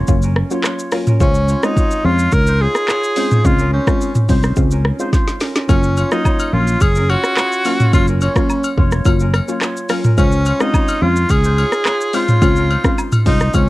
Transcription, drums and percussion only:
0.08 kick, shaker
0.22 shaker
0.36 cross-stick
0.51 shaker
0.64 cross-stick, clap, shaker
0.79 shaker
0.92 cross-stick, open hi-hat, shaker
1.07 mid tom, shaker
1.20 kick, shaker
1.34 shaker
1.48 shaker
1.63 cross-stick, shaker
1.77 kick, shaker
1.91 shaker
2.19 shaker
2.32 kick, shaker
2.47 shaker
2.75 cross-stick, shaker
2.89 cross-stick, clap, shaker
3.04 shaker
3.16 open hi-hat, shaker
3.31 mid tom, shaker
3.45 kick, shaker
3.59 shaker
3.87 kick, cross-stick, shaker
4.01 shaker
4.15 mid tom, shaker
4.29 kick, open hi-hat, shaker
4.43 cross-stick, shaker
4.56 kick, shaker
4.71 shaker
4.85 cross-stick
5.00 shaker
5.13 kick, snare, shaker
5.28 snare, shaker
5.41 snare, open hi-hat, shaker
5.56 snare, shaker
5.69 kick, high agogo, shaker
5.83 shaker
5.97 high agogo, shaker
6.12 cross-stick, shaker
6.25 kick, low woodblock, shaker
6.39 high agogo, shaker
6.67 shaker
6.81 kick, high agogo, shaker
6.95 shaker
7.10 high agogo
7.24 cross-stick, shaker
7.37 cross-stick, clap, low woodblock, shaker
7.52 shaker
7.65 open hi-hat, high agogo, shaker
7.80 mid tom, shaker
7.93 kick, high agogo, shaker
8.07 shaker
8.21 high agogo, shaker
8.36 kick, cross-stick, shaker
8.50 low woodblock, shaker
8.64 high agogo, shaker
8.78 kick
8.92 cross-stick, shaker
9.05 kick, high agogo, shaker
9.20 shaker
9.34 cross-stick, high agogo
9.48 shaker
9.61 cross-stick, clap, low woodblock, shaker
9.77 shaker
9.89 cross-stick, open hi-hat, high agogo, shaker
10.04 mid tom, shaker
10.18 kick, high agogo, shaker
10.32 shaker
10.46 high agogo, shaker
10.60 cross-stick, shaker
10.74 kick, low woodblock, shaker
10.88 high agogo, shaker
11.16 shaker
11.29 kick, high agogo, shaker
11.44 shaker
11.58 high agogo
11.72 cross-stick, shaker
11.86 cross-stick, clap, low woodblock, shaker
12.01 shaker
12.13 open hi-hat, high agogo, shaker
12.29 mid tom, shaker
12.42 kick, high agogo, shaker
12.56 shaker
12.71 high agogo
12.85 kick, cross-stick, shaker
12.98 low woodblock, shaker
13.12 mid tom, high agogo, shaker
13.26 kick, open hi-hat, shaker
13.40 cross-stick, shaker
13.54 kick, high agogo, shaker

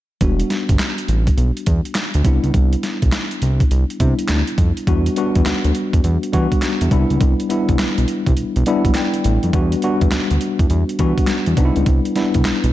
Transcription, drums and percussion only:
0.21 kick, closed hi-hat
0.40 closed hi-hat
0.50 snare, closed hi-hat
0.69 kick, closed hi-hat
0.79 snare, clap, closed hi-hat
0.98 closed hi-hat
1.08 closed hi-hat
1.27 kick, closed hi-hat
1.38 closed hi-hat
1.57 closed hi-hat
1.66 kick, closed hi-hat
1.85 closed hi-hat
1.95 snare, clap, closed hi-hat
2.14 closed hi-hat
2.25 kick, closed hi-hat
2.44 closed hi-hat
2.54 kick, closed hi-hat
2.73 closed hi-hat
2.83 snare, closed hi-hat
3.02 kick, closed hi-hat
3.12 snare, clap, closed hi-hat
3.31 closed hi-hat
3.42 closed hi-hat
3.60 kick, closed hi-hat
3.71 closed hi-hat
3.90 closed hi-hat
4.00 kick, closed hi-hat
4.19 closed hi-hat
4.28 snare, clap, closed hi-hat
4.47 closed hi-hat
4.58 kick, closed hi-hat
4.77 closed hi-hat
4.87 kick, closed hi-hat
5.06 closed hi-hat
5.16 closed hi-hat
5.35 kick, closed hi-hat
5.46 snare, clap, closed hi-hat
5.64 closed hi-hat
5.75 closed hi-hat
5.93 kick, closed hi-hat
6.04 closed hi-hat
6.23 closed hi-hat
6.33 kick, closed hi-hat
6.52 kick, closed hi-hat
6.62 snare, clap, closed hi-hat
6.81 closed hi-hat
6.91 kick, closed hi-hat
7.10 closed hi-hat
7.21 kick, closed hi-hat
7.40 closed hi-hat
7.50 closed hi-hat
7.69 kick, closed hi-hat
7.79 snare, clap, closed hi-hat
7.98 closed hi-hat
8.08 closed hi-hat
8.27 kick, closed hi-hat
8.37 closed hi-hat
8.56 closed hi-hat
8.66 closed hi-hat
8.85 kick, closed hi-hat
8.95 snare, clap, closed hi-hat
9.14 closed hi-hat
9.24 closed hi-hat
9.43 closed hi-hat
9.53 kick, closed hi-hat
9.72 closed hi-hat
9.82 closed hi-hat
10.01 kick, closed hi-hat
10.11 snare, clap, closed hi-hat
10.30 closed hi-hat
10.41 closed hi-hat
10.59 kick, closed hi-hat
10.70 closed hi-hat
10.89 closed hi-hat
10.99 kick, closed hi-hat
11.18 kick, closed hi-hat
11.27 snare, clap, closed hi-hat
11.46 closed hi-hat
11.57 kick, closed hi-hat
11.76 closed hi-hat
11.86 kick, closed hi-hat
12.05 closed hi-hat
12.16 snare, closed hi-hat
12.34 kick, closed hi-hat
12.45 snare, clap, closed hi-hat
12.64 closed hi-hat

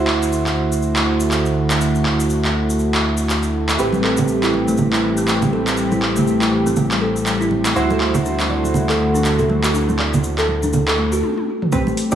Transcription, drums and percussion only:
0.07 clap
0.23 shaker
0.32 shaker
0.47 clap, shaker
0.72 shaker
0.82 shaker
0.96 clap, shaker
1.20 shaker
1.31 clap, shaker
1.45 shaker
1.70 clap, shaker
1.81 shaker
1.95 shaker
2.06 clap
2.20 shaker
2.30 shaker
2.45 clap, shaker
2.70 shaker
2.79 shaker
2.94 clap, shaker
3.17 shaker
3.30 clap, shaker
3.43 shaker
3.69 clap, shaker
3.79 shaker
3.93 high conga, shaker
4.04 clap
4.17 low conga, shaker
4.28 shaker
4.43 clap, shaker
4.54 high conga
4.68 high conga, shaker
4.77 low conga, shaker
4.93 clap, shaker
5.17 shaker
5.28 clap, shaker
5.42 low conga, shaker
5.53 high conga
5.67 clap, shaker
5.77 shaker
5.92 high conga, shaker
6.02 clap
6.16 low conga, shaker
6.27 shaker
6.42 clap, shaker
6.66 high conga, shaker
6.76 low conga, shaker
6.91 clap, shaker
7.16 shaker
7.26 clap, shaker
7.41 shaker
7.51 high conga
7.65 clap, shaker
7.76 shaker
7.90 high conga, shaker
8.00 clap
8.15 low conga, shaker
8.26 shaker
8.40 clap, shaker
8.50 high conga
8.64 high conga, shaker
8.74 low conga, shaker
8.89 clap, shaker
9.15 shaker
9.25 clap, shaker
9.39 low conga, shaker
9.50 high conga
9.64 clap, shaker
9.74 shaker
9.89 high conga, shaker
9.99 clap
10.14 low conga, shaker
10.24 shaker
10.38 clap, shaker
10.49 high conga
10.63 high conga, shaker
10.73 low conga, shaker
10.88 clap, shaker
11.12 shaker
11.23 high tom
11.38 high tom
11.62 mid tom
11.72 kick, shaker
11.87 high conga, shaker
11.97 open hi-hat
12.12 mid tom, shaker

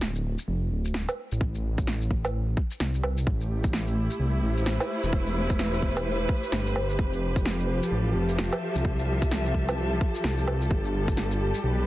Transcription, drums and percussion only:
0.01 snare
0.15 shaker
0.39 shaker
0.85 shaker
0.94 snare
1.09 low woodblock, shaker
1.32 shaker
1.41 kick
1.55 shaker
1.78 kick, shaker
1.87 snare
2.01 shaker
2.11 kick
2.25 low woodblock, shaker
2.57 kick
2.71 shaker
2.80 snare
2.94 shaker
3.03 low woodblock
3.18 shaker
3.27 kick
3.41 shaker
3.64 kick, shaker
3.73 snare
3.87 shaker
4.11 shaker
4.57 shaker
4.66 snare
4.80 low woodblock, shaker
5.03 shaker
5.13 kick
5.27 shaker
5.50 kick, shaker
5.59 snare
5.74 shaker
5.82 kick
5.97 low woodblock, shaker
6.29 kick
6.43 shaker
6.52 snare
6.67 shaker
6.76 low woodblock
6.90 shaker
6.99 kick
7.13 shaker
7.36 kick, shaker
7.46 snare
7.60 shaker
7.83 shaker
8.29 shaker
8.39 snare
8.53 low woodblock, shaker
8.76 shaker
8.85 kick
8.99 shaker
9.22 kick, shaker
9.31 snare
9.45 shaker
9.54 kick
9.69 low woodblock, shaker
10.01 kick
10.15 shaker
10.24 snare
10.38 shaker
10.48 low woodblock
10.61 shaker
10.71 kick
10.85 shaker
11.08 kick, shaker
11.17 snare
11.31 shaker
11.55 shaker

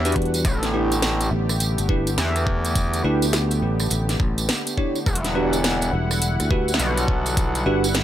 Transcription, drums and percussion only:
0.05 closed hi-hat, tambourine
0.12 closed hi-hat
0.16 kick, closed hi-hat
0.22 closed hi-hat
0.25 closed hi-hat
0.34 closed hi-hat, tambourine
0.45 kick, closed hi-hat, tambourine
0.63 snare, closed hi-hat, tambourine
0.92 closed hi-hat, tambourine
1.02 snare, closed hi-hat, tambourine
1.20 closed hi-hat, tambourine
1.49 cross-stick, tambourine
1.60 closed hi-hat, tambourine
1.78 closed hi-hat, tambourine
1.89 kick
2.07 closed hi-hat, tambourine
2.18 snare, closed hi-hat, tambourine
2.36 cross-stick, closed hi-hat, tambourine
2.47 kick
2.65 closed hi-hat, tambourine
2.75 kick, closed hi-hat, tambourine
2.93 closed hi-hat, tambourine
3.22 closed hi-hat, tambourine
3.33 snare, closed hi-hat, tambourine
3.51 closed hi-hat, tambourine
3.80 cross-stick, tambourine
3.90 closed hi-hat, tambourine
4.09 snare, closed hi-hat, tambourine
4.20 kick
4.38 closed hi-hat, tambourine
4.49 snare, closed hi-hat, tambourine
4.67 closed hi-hat, tambourine
4.78 kick
4.95 tambourine
5.06 kick, tambourine
5.15 closed hi-hat
5.24 snare, closed hi-hat, tambourine
5.53 closed hi-hat, tambourine
5.64 snare, closed hi-hat, tambourine
5.81 closed hi-hat, tambourine
6.11 cross-stick, tambourine
6.22 closed hi-hat, tambourine
6.40 cross-stick, closed hi-hat, tambourine
6.51 kick
6.68 closed hi-hat, tambourine
6.74 snare
6.79 closed hi-hat, tambourine
6.97 cross-stick, closed hi-hat, tambourine
7.08 kick
7.26 closed hi-hat, tambourine
7.37 kick, closed hi-hat, tambourine
7.55 closed hi-hat, tambourine
7.84 closed hi-hat, tambourine
7.94 snare, closed hi-hat, tambourine

